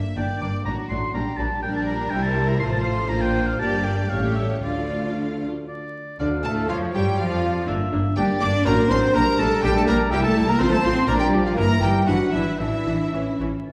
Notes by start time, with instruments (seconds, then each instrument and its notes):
Already playing: french horn section A#3 D4, violin section E5
0.16 double bass section G1, cello section G2, viola section A#3 D4, violin section D5, oboe G5, flute section G5
0.41 double bass section G1, cello section G2, viola section A#3 D4, violin section D5, oboe D6, flute section D6
0.64 double bass section A1, cello section A2, french horn section F#3, viola section F#3 D4, violin section F#4 D5, oboe A#5, flute section A#5
0.89 double bass section A1, cello section A2, viola section F#3 D4, violin section D5, oboe C6, flute section C6
1.13 double bass section A#1, cello section A#2, french horn section G3 D4, viola section G3 D4, violin section G4 D5, oboe A#5, flute section A#5
1.37 double bass section A#1, cello section A#2, viola section G3 D4, violin section D5, oboe A5, flute section A5
1.62 double bass section A#1, cello section A#2, french horn section G3 D4, viola section G3 D4, violin section A#4 D5, flute section G5, oboe G5
1.75 flute section A5, oboe A5
1.86 flute section A#5, oboe A#5
2.10 double bass section C2, cello section C3, french horn section G3 E4, viola section G3 E4, violin section C5, oboe G5, flute section G5
2.22 oboe A5, flute section A5
2.48 flute section A#5, oboe A#5
2.60 double bass section A1, cello section A2, viola section F3 F4, french horn section A3 F4, violin section C5, oboe C6, flute section C6
2.72 flute section A5, oboe A5
2.84 oboe C6, flute section C6
3.09 double bass section A#1, cello section A#2, french horn section A#3 D4, viola section A#3 F4, violin section D5, flute section A#5, oboe A#5
3.21 oboe G5, flute section G5
3.46 flute section F5, oboe F5
3.59 double bass section G1, cello section G2, viola section A#3 G4, french horn section A#3 D4, violin section D5, oboe A5, flute section A5
3.84 oboe G5, flute section G5
4.09 double bass section A1, cello section A2, french horn section G3 C#4, viola section A3 G4, violin section C#5, oboe F5, flute section F5
4.35 oboe E5, flute section E5
4.62 double bass section D2, cello section D3, french horn section F3 D4, viola section A3 F4, flute section D5, oboe D5, violin section D5 F5
5.68 oboe D5
6.18 double bass section D2, cello section D3, french horn section D3, viola section D3, trumpet D4, violin section D4 D5, flute section D5, oboe F5
6.43 double bass section A2, french horn section A3, cello section A3, viola section A3, trumpet A4, violin section A4 A5, flute section A5
6.68 double bass section F2, french horn section F3, cello section F3, viola section F3, violin section F4 F5, trumpet F4, oboe C#5, flute section F5
6.93 double bass section G2, viola section G3, cello section G3, french horn section G3, trumpet G4, violin section G4 G5, flute section G5
7.18 double bass section F2, french horn section F3, viola section F3, cello section F3, trumpet F4, violin section F4 F5, oboe D5, flute section F5
7.66 double bass section G1, french horn section A#3 D4, viola section A#3 D4, oboe E5
7.92 double bass section G1, viola section A#3 D4
8.16 double bass section G1, cello section G3, viola section A#3 D4, trumpet G4, violin section G4 G5, oboe D5, flute section G5
8.41 double bass section G1, viola section A#3 D4, cello section D4, trumpet D5, violin section D5 D6, flute section D6
8.65 double bass section A1, french horn section F#3, viola section F#3 D4, cello section A#3, trumpet A#4, violin section A#4 A#5, oboe C5, flute section A#5
8.90 double bass section A1, viola section F#3 D4, cello section C4, trumpet C5, violin section C5 C6, flute section C6
9.14 double bass section A#1, french horn section G3, viola section G3 D4, cello section A#3, trumpet A#4, violin section A#4 A#5, oboe A#4, flute section A#5
9.38 double bass section A#1, viola section G3 D4, cello section A3, trumpet A4, violin section A4 A5, flute section A5
9.63 double bass section A#1, cello section G3, viola section G3 D4, french horn section G3 D4, trumpet G4, violin section G4 G5, oboe D5, flute section G5
9.75 cello section A3, trumpet A4, violin section A4 A5, flute section A5
9.87 double bass section A#1, viola section G3 D4, cello section A#3, trumpet A#4, violin section A#4 A#5, flute section A#5
10.11 double bass section C2, french horn section G3 E4, cello section G3, viola section G3 E4, trumpet G4, violin section G4 G5, oboe E5, flute section G5
10.23 cello section A3, trumpet A4, violin section A4 A5, flute section A5
10.36 double bass section C2, viola section G3 E4
10.48 cello section A#3, violin section A#4 A#5, trumpet A#4, flute section A#5
10.59 double bass section A1, viola section F3 F4, french horn section F3 F4, cello section C4, trumpet C5, violin section C5 C6, oboe C5, flute section C6
10.71 cello section A3, trumpet A4, violin section A4 A5, flute section A5
10.83 double bass section A1, viola section F3 F4, cello section C4, french horn section E4, trumpet C5, violin section C5 C6, flute section C6
11.07 double bass section A#1, french horn section F3 D4, viola section F3 D4, cello section A#3, trumpet A#4, violin section A#4 A#5, oboe D5, flute section A#5
11.19 cello section G3, violin section G4 G5, trumpet G4, flute section G5
11.33 double bass section A#1, viola section F3 D4
11.44 cello section F3, violin section F4 F5, trumpet F4, flute section F5
11.55 double bass section G1, french horn section E3 E4, viola section E3 E4, cello section A#3, violin section A#4 A#5, trumpet A#4, oboe A#4, flute section A#5
11.80 double bass section G1, viola section E3 E4, cello section G3, violin section G4 G5, trumpet G4, flute section G5
12.06 double bass section G#1, french horn section E3 D4, viola section E3 D4, cello section F#3, trumpet F#4, violin section F#4 F#5, oboe B4, flute section F#5
12.32 double bass section G#1, cello section E3, viola section E3 D4, trumpet E4, violin section E4 E5, flute section E5
12.59 double bass section A1, cello section E3, viola section E3 D4, french horn section E3 D4, trumpet E4, violin section E4 E5, flute section E5, oboe E5
12.86 double bass section A1, viola section E3 D4
13.12 double bass section A1, french horn section E3 C#4, viola section E3 C#4
13.39 double bass section A1, viola section E3 C#4
13.65 french horn section D3, clarinet F4, flute section A6